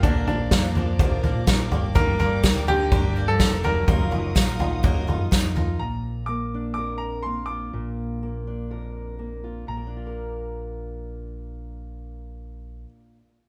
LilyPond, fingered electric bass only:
\new Staff \with { instrumentName = "Fingered electric bass" } { \clef bass \time 4/4 \key bes \major \tempo 4 = 124 bes,,4 f,4 bes,,8. bes,16 bes,,8 g,,8~ | g,,4 d,4 g,,8. g,16 f,,4 | ges,,4 bes,,4 ges,,8. ges,16 f,4 | bes,,1 |
bes,,1 | bes,,1~ | bes,,1 | }